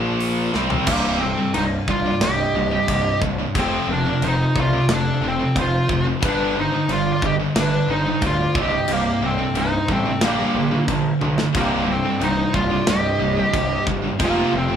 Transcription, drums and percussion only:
0.20 open hi-hat medium
0.54 snare medium
0.70 floor tom medium
0.87 kick loud
0.87 crash loud
0.87 crash medium
1.54 crash medium
1.88 kick medium
2.21 snare loud
2.21 crash medium
2.88 kick medium
2.88 crash medium
3.22 kick loud
3.55 kick loud
3.55 crash medium
4.22 crash medium
4.56 kick medium
4.89 snare loud
4.89 crash medium
5.56 kick medium
5.56 crash medium
5.89 kick loud
6.23 kick loud
6.23 crash medium
6.89 crash medium
7.22 kick loud
7.56 snare loud
7.56 crash medium
8.22 kick loud
8.22 crash medium
8.55 kick loud
8.88 crash medium
9.55 crash medium
9.88 kick medium
10.21 snare loud
10.21 crash medium
10.88 kick medium
10.88 crash medium
11.21 high tom medium
11.38 snare medium
11.55 kick loud
11.55 crash medium
12.21 crash medium
12.54 kick medium
12.87 snare loud
12.87 crash medium
13.54 kick medium
13.54 crash medium
13.87 kick loud
14.20 kick loud
14.20 crash medium

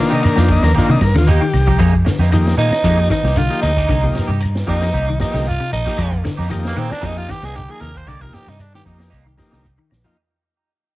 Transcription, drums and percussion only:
0.10 snare soft
0.23 ride bell medium
0.23 claves medium
0.23 shekere loud
0.37 snare medium
0.48 kick medium
0.48 ride bell medium
0.48 shekere soft
0.63 snare medium
0.63 claves medium
0.74 kick medium
0.74 ride bell medium
0.74 shekere loud
1.01 kick medium
1.01 snare medium
1.01 ride bell soft
1.01 claves medium
1.01 shekere soft
1.15 snare medium
1.15 ride bell medium
1.27 ride bell medium
1.27 shekere loud
1.54 open hi-hat medium
1.54 claves medium
1.54 shekere soft
1.67 kick medium
1.67 ride bell soft
1.80 kick medium
1.80 closed hi-hat medium
1.80 claves medium
1.80 shekere medium
1.94 kick medium
1.94 closed hi-hat soft
2.06 snare medium
2.06 closed hi-hat soft
2.06 shekere medium
2.20 snare soft
2.20 shekere soft
2.32 closed hi-hat medium
2.32 claves medium
2.32 shekere medium
2.47 snare medium
2.47 closed hi-hat soft
2.59 closed hi-hat soft
2.59 shekere soft
2.72 snare medium
2.72 closed hi-hat soft
2.72 claves medium
2.84 kick medium
2.84 snare soft
2.84 closed hi-hat medium
2.84 shekere medium
2.99 closed hi-hat soft
3.10 kick medium
3.10 snare medium
3.10 closed hi-hat soft
3.10 claves medium
3.10 shekere medium
3.24 snare medium
3.24 closed hi-hat soft
3.24 shekere soft
3.36 closed hi-hat medium
3.36 shekere medium
3.51 closed hi-hat soft
3.63 snare soft
3.63 closed hi-hat soft
3.63 claves medium
3.63 shekere soft
3.77 kick medium
3.77 closed hi-hat soft
3.77 shekere medium
3.89 kick medium
3.89 closed hi-hat medium
3.89 claves medium
3.89 shekere medium
4.03 kick medium
4.03 closed hi-hat soft
4.15 snare medium
4.15 closed hi-hat medium
4.15 shekere medium
4.33 shekere soft
4.40 closed hi-hat medium
4.40 claves medium
4.45 shekere medium
4.55 snare medium
4.55 closed hi-hat soft
4.67 kick medium
4.67 closed hi-hat medium
4.72 shekere soft
4.82 snare medium
4.82 closed hi-hat soft
4.82 claves medium
4.94 kick medium
4.94 closed hi-hat medium
4.94 shekere medium
5.08 closed hi-hat soft
5.20 kick medium
5.20 snare medium
5.20 closed hi-hat soft
5.20 claves medium
5.20 shekere medium
5.34 snare medium
5.34 shekere soft
5.45 closed hi-hat medium
5.50 shekere medium
5.72 open hi-hat medium
5.72 claves medium
5.72 shekere soft
5.86 kick medium
5.86 closed hi-hat soft
5.86 shekere medium
5.98 kick loud
5.98 closed hi-hat medium
5.98 claves medium
5.98 shekere medium
6.13 kick medium
6.13 closed hi-hat soft
6.25 snare medium
6.25 closed hi-hat medium
6.25 shekere medium
6.40 snare soft
6.40 shekere soft
6.50 closed hi-hat medium
6.50 claves medium
6.50 shekere medium
6.65 snare medium
6.65 closed hi-hat soft
6.77 closed hi-hat soft
6.77 shekere soft
6.91 snare medium
6.91 closed hi-hat soft
6.91 claves medium
7.03 kick medium
7.03 closed hi-hat medium
7.03 shekere medium
7.18 closed hi-hat soft
7.29 kick medium
7.29 snare medium
7.29 closed hi-hat medium
7.29 claves medium
7.29 shekere medium
7.43 snare medium
7.43 closed hi-hat soft
7.43 shekere soft
7.54 closed hi-hat medium
7.54 shekere medium
7.69 closed hi-hat soft
7.81 snare soft
7.81 closed hi-hat medium
7.81 claves medium
7.81 shekere soft
7.94 kick medium
7.94 closed hi-hat soft
7.94 shekere medium
8.06 kick loud
8.06 closed hi-hat medium
8.06 claves medium
8.06 shekere medium
8.21 kick medium
8.21 closed hi-hat soft
8.33 snare medium
8.33 closed hi-hat medium
8.33 shekere medium
8.49 snare soft
8.49 shekere soft
8.60 closed hi-hat medium
8.60 claves medium
8.60 shekere medium
8.74 snare medium
8.74 closed hi-hat soft
8.86 kick medium
8.86 closed hi-hat medium
8.86 shekere soft
8.99 snare medium
8.99 closed hi-hat soft
8.99 claves medium
9.12 kick medium
9.12 snare soft
9.12 closed hi-hat medium
9.12 shekere medium
9.27 closed hi-hat soft
9.38 kick medium
9.38 snare medium
9.38 closed hi-hat soft
9.38 claves medium
9.38 shekere medium
9.52 snare medium
9.52 shekere soft
9.65 kick medium
9.65 shekere medium
9.91 snare medium
9.91 claves medium
9.91 shekere soft
10.05 floor tom medium
10.05 shekere medium

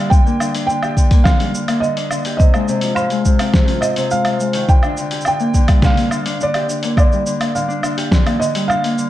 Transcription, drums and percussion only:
0.11 kick loud
0.11 cabasa soft
0.27 cabasa soft
0.40 cabasa medium
0.40 low woodblock medium
0.55 open hi-hat medium
0.55 cabasa soft
0.69 cabasa soft
0.83 cabasa soft
0.83 low woodblock medium
0.97 kick medium
0.97 cabasa medium
1.11 kick loud
1.11 open hi-hat medium
1.11 cabasa soft
1.25 kick loud
1.25 snare medium
1.25 cabasa soft
1.25 low woodblock medium
1.40 open hi-hat soft
1.40 cabasa soft
1.55 cabasa medium
1.68 open hi-hat medium
1.68 cabasa soft
1.68 low woodblock medium
1.83 cabasa soft
1.97 open hi-hat soft
1.97 cabasa soft
2.11 cabasa medium
2.11 low woodblock medium
2.25 open hi-hat soft
2.25 cabasa soft
2.40 kick loud
2.40 cabasa soft
2.54 cabasa soft
2.54 low woodblock medium
2.68 cabasa medium
2.81 open hi-hat medium
2.81 cabasa soft
2.96 cabasa soft
2.96 low woodblock medium
3.10 open hi-hat soft
3.10 cabasa soft
3.25 kick medium
3.25 cabasa medium
3.39 open hi-hat medium
3.39 cabasa soft
3.39 low woodblock medium
3.54 kick loud
3.54 snare medium
3.54 cabasa soft
3.68 open hi-hat soft
3.68 cabasa soft
3.82 cabasa medium
3.82 low woodblock medium
3.96 open hi-hat medium
3.96 cabasa soft
4.11 cabasa soft
4.25 open hi-hat soft
4.25 cabasa soft
4.25 low woodblock medium
4.40 cabasa medium
4.53 open hi-hat medium
4.53 cabasa soft
4.69 kick loud
4.69 cabasa soft
4.83 cabasa soft
4.83 low woodblock medium
4.97 cabasa medium
5.11 open hi-hat medium
5.11 cabasa soft
5.21 cabasa soft
5.25 cabasa soft
5.25 low woodblock medium
5.40 cabasa soft
5.54 kick medium
5.54 cabasa medium
5.68 kick loud
5.68 open hi-hat medium
5.68 cabasa soft
5.68 low woodblock medium
5.82 kick loud
5.82 snare medium
5.82 cabasa soft
5.97 open hi-hat soft
5.97 cabasa soft
6.11 cabasa medium
6.11 low woodblock medium
6.26 open hi-hat medium
6.26 cabasa soft
6.41 cabasa soft
6.54 open hi-hat soft
6.54 cabasa soft
6.54 low woodblock medium
6.69 cabasa medium
6.83 open hi-hat medium
6.83 cabasa soft
6.97 kick loud
6.97 cabasa soft
6.97 low woodblock medium
7.12 cabasa soft
7.26 cabasa medium
7.41 open hi-hat medium
7.41 cabasa soft
7.41 low woodblock medium
7.56 cabasa soft
7.70 cabasa soft
7.83 cabasa medium
7.83 low woodblock medium
7.98 open hi-hat medium
7.98 cabasa soft
8.12 kick loud
8.12 snare medium
8.12 cabasa soft
8.27 open hi-hat soft
8.27 cabasa soft
8.27 low woodblock medium
8.42 cabasa medium
8.55 open hi-hat medium
8.55 cabasa soft
8.70 cabasa soft
8.70 low woodblock medium
8.84 open hi-hat soft
8.84 cabasa soft
8.98 cabasa medium

